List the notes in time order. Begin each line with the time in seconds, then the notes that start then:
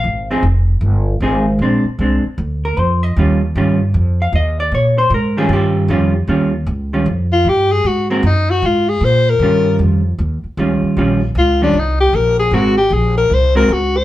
Already playing: F5
0.04 G#1
0.31 F3 C4 D#4 G#4
0.43 F1
0.81 G1
1.20 G#1 F3 C4 D#4 G#4
1.59 A#1 G#3 C4
1.63 D4
1.84 muted upright bass stroke
1.99 C2 G#3 C4 D4
2.24 muted upright bass stroke
2.38 D2
2.65 A#4
2.77 F2 C5
3.03 D#5
3.16 D#2 D#3 G3 C#4 F4
3.56 G2 D#3 G3 C#4 F4
3.94 F2
4.22 F5
4.33 D#2 D#5
4.60 D5
4.72 A#2 C#5
4.98 C5
5.10 G#2
5.14 A#4
5.37 D#3 G3 C#4 F4 G#4
5.49 G2
5.53 G4
5.88 F2 D#3 G3 C#4 F4
6.27 D#2 D#3 G3 C#4 F4
6.66 C#2
6.93 D#3 G3 C#4 F4
7.06 F2
7.33 F4
7.45 G2 G4
7.72 G#4
7.84 G#2 F#4
8.10 G#3 A#3 C4 F#4 A#4
8.23 F#2 D#4
8.50 F#4
8.62 G#2 F4
8.89 G#4
9.01 A#2 C5
9.30 A#4
9.39 G2 D#3 G3 C#4 F4
9.79 F2
10.19 D#2
10.44 muted upright bass stroke
10.57 C#2 D#3 G3 C#4 F4
10.82 muted upright bass stroke
10.97 A#1 D#3 G3 C#4 F4
11.35 C#2 F4
11.62 D#3 G3 C#4 D4 F4
11.73 C2
11.79 D#4
12.00 G4
12.13 A#1 A#4
12.39 G#4
12.51 G#1 G#3 C4 F#4 A#4
12.77 G4
12.90 A#1 G#4
13.18 A#4
13.30 C2 C5
13.55 G#3 C4 F#4 A#4
13.69 C#2
13.73 F#4
13.97 C5